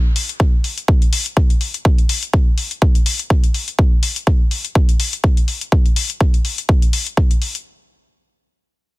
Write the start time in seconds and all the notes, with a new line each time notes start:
0.16 open hi-hat
0.29 closed hi-hat
0.40 kick
0.64 open hi-hat
0.78 closed hi-hat
0.88 kick
1.02 closed hi-hat
1.13 open hi-hat
1.26 closed hi-hat
1.37 kick
1.50 closed hi-hat
1.61 open hi-hat
1.74 closed hi-hat
1.85 kick
1.98 closed hi-hat
2.09 open hi-hat
2.23 closed hi-hat
2.33 kick
2.58 open hi-hat
2.71 closed hi-hat
2.82 kick
2.95 closed hi-hat
3.06 open hi-hat
3.19 closed hi-hat
3.30 kick
3.44 closed hi-hat
3.54 open hi-hat
3.68 closed hi-hat
3.79 kick
4.03 open hi-hat
4.16 closed hi-hat
4.27 kick
4.51 open hi-hat
4.65 closed hi-hat
4.75 kick
4.89 closed hi-hat
5.00 open hi-hat
5.13 closed hi-hat
5.24 kick
5.37 closed hi-hat
5.48 open hi-hat
5.61 closed hi-hat
5.72 kick
5.86 closed hi-hat
5.96 open hi-hat
6.10 closed hi-hat
6.21 kick
6.34 closed hi-hat
6.45 open hi-hat
6.58 closed hi-hat
6.69 kick
6.82 closed hi-hat
6.93 open hi-hat
7.07 closed hi-hat
7.17 kick
7.31 closed hi-hat
7.42 open hi-hat
7.55 closed hi-hat